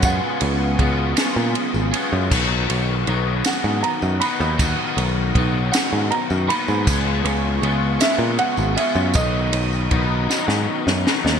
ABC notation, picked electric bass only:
X:1
M:6/8
L:1/16
Q:3/8=53
K:B
V:1 name="Picked electric bass" clef=bass
F,, z C,,2 C,,2 z A,, z G,,, z F,, | B,,,2 B,,,2 B,,,2 z G,, z F,, z D,,- | D,, z B,,,2 B,,,2 z G,, z F,, z G,, | C,,2 C,,2 C,,2 z A,, z G,,, z F,, |
B,,,2 B,,,2 B,,,2 z G,, z F,, z D,, |]